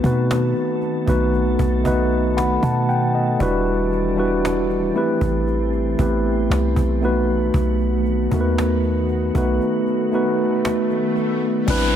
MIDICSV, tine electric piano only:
0, 0, Header, 1, 2, 480
1, 0, Start_track
1, 0, Tempo, 1034483
1, 1578, Time_signature, 4, 2, 24, 8
1, 5549, End_track
2, 0, Start_track
2, 0, Title_t, "Tine electric piano"
2, 0, Program_c, 0, 4
2, 0, Control_c, 0, 64, 127
2, 0, Note_on_c, 0, 57, 80
2, 0, Note_on_c, 0, 59, 78
2, 0, Note_on_c, 0, 63, 77
2, 0, Note_on_c, 0, 66, 73
2, 0, Note_on_c, 0, 71, 92
2, 13, Note_off_c, 0, 57, 0
2, 13, Note_on_c, 0, 57, 70
2, 15, Note_off_c, 0, 59, 0
2, 15, Note_on_c, 0, 59, 68
2, 20, Note_on_c, 0, 60, 55
2, 24, Note_off_c, 0, 66, 0
2, 24, Note_on_c, 0, 66, 69
2, 28, Note_off_c, 0, 71, 0
2, 28, Note_on_c, 0, 71, 78
2, 49, Note_off_c, 0, 60, 0
2, 50, Note_off_c, 0, 63, 0
2, 50, Note_on_c, 0, 63, 64
2, 387, Note_off_c, 0, 57, 0
2, 388, Note_off_c, 0, 59, 0
2, 392, Note_off_c, 0, 66, 0
2, 394, Note_off_c, 0, 71, 0
2, 405, Note_off_c, 0, 63, 0
2, 493, Note_on_c, 0, 57, 78
2, 496, Note_on_c, 0, 59, 71
2, 500, Note_on_c, 0, 63, 72
2, 504, Note_on_c, 0, 66, 75
2, 507, Note_on_c, 0, 71, 89
2, 774, Note_off_c, 0, 57, 0
2, 775, Note_off_c, 0, 59, 0
2, 777, Note_off_c, 0, 63, 0
2, 779, Note_off_c, 0, 66, 0
2, 781, Note_off_c, 0, 71, 0
2, 853, Note_on_c, 0, 57, 83
2, 857, Note_on_c, 0, 59, 71
2, 860, Note_on_c, 0, 63, 68
2, 860, Note_on_c, 0, 75, 65
2, 864, Note_on_c, 0, 66, 68
2, 868, Note_on_c, 0, 71, 91
2, 1082, Note_off_c, 0, 75, 0
2, 1099, Note_on_c, 0, 78, 73
2, 1100, Note_on_c, 0, 83, 58
2, 1210, Note_off_c, 0, 78, 0
2, 1213, Note_off_c, 0, 83, 0
2, 1221, Note_on_c, 0, 78, 68
2, 1221, Note_on_c, 0, 81, 67
2, 1331, Note_off_c, 0, 78, 0
2, 1334, Note_off_c, 0, 81, 0
2, 1341, Note_on_c, 0, 78, 63
2, 1341, Note_on_c, 0, 79, 68
2, 1412, Note_off_c, 0, 57, 0
2, 1414, Note_off_c, 0, 59, 0
2, 1416, Note_off_c, 0, 63, 0
2, 1418, Note_off_c, 0, 66, 0
2, 1420, Note_off_c, 0, 71, 0
2, 1453, Note_off_c, 0, 78, 0
2, 1461, Note_on_c, 0, 75, 64
2, 1563, Note_off_c, 0, 79, 0
2, 1573, Note_on_c, 0, 55, 112
2, 1577, Note_on_c, 0, 62, 98
2, 1582, Note_on_c, 0, 64, 95
2, 1583, Control_c, 0, 64, 0
2, 1586, Note_on_c, 0, 66, 97
2, 1589, Note_on_c, 0, 71, 119
2, 1674, Control_c, 0, 64, 127
2, 1687, Note_off_c, 0, 75, 0
2, 1854, Note_off_c, 0, 55, 0
2, 1856, Note_off_c, 0, 62, 0
2, 1858, Note_off_c, 0, 64, 0
2, 1860, Note_off_c, 0, 66, 0
2, 1862, Note_off_c, 0, 71, 0
2, 1931, Note_on_c, 0, 55, 78
2, 1935, Note_on_c, 0, 62, 73
2, 1940, Note_on_c, 0, 64, 70
2, 1942, Note_on_c, 0, 66, 74
2, 1947, Note_on_c, 0, 71, 93
2, 2293, Note_on_c, 0, 57, 82
2, 2295, Note_off_c, 0, 55, 0
2, 2296, Note_off_c, 0, 64, 0
2, 2297, Note_off_c, 0, 62, 0
2, 2297, Note_on_c, 0, 60, 79
2, 2300, Note_off_c, 0, 66, 0
2, 2301, Note_on_c, 0, 64, 78
2, 2302, Note_off_c, 0, 71, 0
2, 2304, Control_c, 0, 64, 0
2, 2305, Note_on_c, 0, 67, 80
2, 2309, Note_on_c, 0, 71, 88
2, 2394, Control_c, 0, 64, 127
2, 2680, Note_off_c, 0, 57, 0
2, 2681, Note_off_c, 0, 60, 0
2, 2684, Note_off_c, 0, 64, 0
2, 2685, Note_off_c, 0, 67, 0
2, 2687, Note_off_c, 0, 71, 0
2, 2774, Note_on_c, 0, 57, 72
2, 2778, Note_on_c, 0, 59, 52
2, 2782, Note_on_c, 0, 64, 68
2, 2784, Note_on_c, 0, 67, 67
2, 2790, Note_on_c, 0, 71, 80
2, 2807, Note_on_c, 0, 60, 65
2, 2808, Note_off_c, 0, 59, 0
2, 3147, Note_off_c, 0, 57, 0
2, 3151, Note_off_c, 0, 64, 0
2, 3152, Note_off_c, 0, 67, 0
2, 3155, Note_off_c, 0, 71, 0
2, 3164, Note_off_c, 0, 60, 0
2, 3255, Note_on_c, 0, 57, 80
2, 3258, Note_on_c, 0, 59, 75
2, 3262, Note_on_c, 0, 63, 80
2, 3264, Control_c, 0, 64, 0
2, 3266, Note_on_c, 0, 66, 77
2, 3270, Note_on_c, 0, 71, 94
2, 3339, Control_c, 0, 64, 127
2, 3736, Note_off_c, 0, 57, 0
2, 3738, Note_off_c, 0, 59, 0
2, 3740, Note_off_c, 0, 63, 0
2, 3742, Note_off_c, 0, 66, 0
2, 3744, Note_off_c, 0, 71, 0
2, 3855, Note_on_c, 0, 57, 70
2, 3859, Note_on_c, 0, 59, 64
2, 3863, Note_on_c, 0, 63, 68
2, 3866, Note_on_c, 0, 66, 64
2, 3870, Note_on_c, 0, 70, 62
2, 3894, Note_off_c, 0, 70, 0
2, 3901, Note_on_c, 0, 71, 79
2, 4227, Note_off_c, 0, 57, 0
2, 4229, Note_off_c, 0, 59, 0
2, 4231, Note_off_c, 0, 63, 0
2, 4233, Note_off_c, 0, 66, 0
2, 4251, Note_off_c, 0, 71, 0
2, 4335, Note_on_c, 0, 57, 83
2, 4339, Note_on_c, 0, 59, 74
2, 4343, Note_on_c, 0, 63, 73
2, 4346, Note_on_c, 0, 66, 73
2, 4350, Note_on_c, 0, 71, 88
2, 4615, Note_off_c, 0, 57, 0
2, 4617, Note_off_c, 0, 59, 0
2, 4619, Note_off_c, 0, 63, 0
2, 4620, Note_off_c, 0, 66, 0
2, 4622, Note_off_c, 0, 71, 0
2, 4695, Note_on_c, 0, 57, 79
2, 4699, Note_on_c, 0, 59, 72
2, 4702, Note_on_c, 0, 63, 76
2, 4706, Note_on_c, 0, 66, 75
2, 4710, Note_on_c, 0, 71, 88
2, 5253, Note_off_c, 0, 57, 0
2, 5255, Note_off_c, 0, 59, 0
2, 5257, Note_off_c, 0, 63, 0
2, 5259, Note_off_c, 0, 66, 0
2, 5261, Note_off_c, 0, 71, 0
2, 5414, Note_on_c, 0, 55, 113
2, 5418, Note_on_c, 0, 60, 102
2, 5422, Note_on_c, 0, 62, 109
2, 5425, Control_c, 0, 64, 0
2, 5426, Note_on_c, 0, 64, 99
2, 5430, Note_on_c, 0, 71, 127
2, 5513, Control_c, 0, 64, 127
2, 5549, Note_off_c, 0, 55, 0
2, 5549, Note_off_c, 0, 60, 0
2, 5549, Note_off_c, 0, 62, 0
2, 5549, Note_off_c, 0, 64, 0
2, 5549, Note_off_c, 0, 71, 0
2, 5549, End_track
0, 0, End_of_file